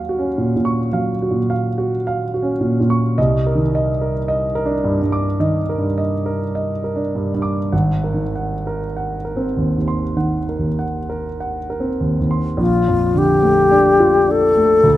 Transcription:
Already playing: grand piano D#2 F#3 F#4 F5
0.09 grand piano F#4
0.19 grand piano C#4
0.38 grand piano A#2
0.56 grand piano A#2
0.65 grand piano C#6
0.93 grand piano F#3 F5
1.22 grand piano F#4
1.31 grand piano A#2
1.50 grand piano F5
1.78 grand piano F#4
2.07 grand piano F5
2.34 grand piano F#4
2.42 grand piano C#4
2.60 grand piano A#2
2.80 grand piano A#2
2.90 grand piano C#6
3.18 grand piano C2 D#5
3.47 grand piano A#4
3.55 grand piano D#3
3.75 grand piano D#5
4.01 grand piano A#4
4.28 grand piano D#5
4.55 grand piano A#4
4.65 grand piano D4
4.84 grand piano G2
5.02 grand piano G2
5.12 grand piano D6
5.40 grand piano D#3 D#5
5.69 grand piano A#4
5.78 grand piano G2
5.98 grand piano D#5
6.26 grand piano A#4
6.55 grand piano D#5
6.84 grand piano A#4
6.96 grand piano D4
7.15 grand piano G2
7.34 grand piano G2
7.42 grand piano D6
7.72 grand piano G#1 F#5
8.04 grand piano A#4
8.14 grand piano D#3
8.35 grand piano F#5
8.67 grand piano A#4
8.97 grand piano F#5
9.25 grand piano A#4
9.37 grand piano C4
9.57 grand piano D#2
9.78 grand piano D#2
9.88 grand piano C6
10.16 grand piano D#3 F#5
10.49 grand piano A#4
10.59 grand piano D#2
10.79 grand piano F#5
11.09 grand piano A#4
11.40 grand piano F#5
11.70 grand piano A#4
11.80 grand piano C4
12.01 grand piano D#2
12.20 grand piano D#2
12.31 grand piano C6
12.57 grand piano A#1, alto flute F4
12.88 grand piano F2
13.15 grand piano D3, alto flute G4
13.43 grand piano A3
13.71 grand piano D4
14.00 grand piano F4
14.28 grand piano D4, alto flute A4
14.57 grand piano A3
14.84 grand piano D2

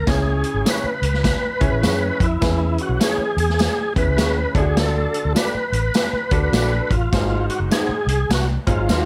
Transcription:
0.07 fingered electric bass C#2, upright piano C#3 C#4 E4 G#4 C#5, tonewheel organ G#4, kick, snare, closed hi-hat, tambourine
0.44 closed hi-hat
0.54 fingered electric bass G#1
0.65 clean electric guitar E4 G#4 C#5, tonewheel organ B4, snare, closed hi-hat, tambourine
0.84 muted fingered electric bass stroke
1.02 fingered electric bass C#2, closed hi-hat
1.14 snare
1.24 kick, snare, closed hi-hat, tambourine
1.60 fingered electric bass C#2, upright piano C#4 E4 G#4 C#5, kick, closed hi-hat
1.72 fingered electric bass A1
1.82 fingered electric bass F#2, clean electric guitar E4 G#4 C#5, snare, closed hi-hat, tambourine
2.20 fingered electric bass F2, tonewheel organ E4, kick, closed hi-hat
2.41 fingered electric bass E2, upright piano E3 C#4 E4 G#4 B4, kick, snare, closed hi-hat, tambourine
2.78 tonewheel organ F#4, closed hi-hat
2.89 fingered electric bass B1
3.00 clean electric guitar E4 G#4 C#5, snare, closed hi-hat, tambourine
3.04 tonewheel organ G#4
3.18 muted fingered electric bass stroke
3.37 fingered electric bass E2, tonewheel organ G#4, closed hi-hat
3.49 snare
3.59 snare, closed hi-hat, tambourine
3.96 fingered electric bass E2, upright piano C#4 E4 G#4 B4, tonewheel organ B4, kick, closed hi-hat
4.07 fingered electric bass C#2
4.17 fingered electric bass D#2, clean electric guitar E4 G#4 C#5, snare, closed hi-hat, tambourine
4.55 fingered electric bass D2, upright piano D3 D4 E4 A4 D5, tonewheel organ G#4, kick, closed hi-hat
4.61 upright piano F#4
4.77 tonewheel organ A4, snare, closed hi-hat, tambourine
5.14 closed hi-hat
5.25 fingered electric bass D2
5.35 clean electric guitar F#4 A4 D5, tonewheel organ B4, snare, closed hi-hat, tambourine
5.54 muted fingered electric bass stroke
5.72 fingered electric bass A1, closed hi-hat
5.94 snare, closed hi-hat, tambourine
6.13 muted fingered electric bass stroke
6.31 fingered electric bass D2, upright piano D4 F#4 A4 B4, kick, closed hi-hat
6.52 fingered electric bass A#1, clean electric guitar F#4 A4 D5, snare, closed hi-hat, tambourine
6.90 fingered electric bass A1, tonewheel organ F4, kick, closed hi-hat
7.13 fingered electric bass G#1, upright piano G#2 D#4 F#4 G#4 C5, kick, snare, closed hi-hat, tambourine
7.50 tonewheel organ F#4, closed hi-hat
7.59 fingered electric bass F#1
7.71 clean electric guitar D#4 F#4 C5, tonewheel organ G#4, snare, closed hi-hat, tambourine
7.89 muted fingered electric bass stroke
8.07 fingered electric bass C2, tonewheel organ G#4, closed hi-hat
8.29 fingered electric bass C2, tonewheel organ F#4, snare, closed hi-hat, tambourine
8.67 fingered electric bass G#1, upright piano F#3 D#4 G#4 C5, tonewheel organ F4, kick, closed hi-hat
8.88 fingered electric bass D#2, clean electric guitar D#4 F#4 C5, snare, closed hi-hat, tambourine

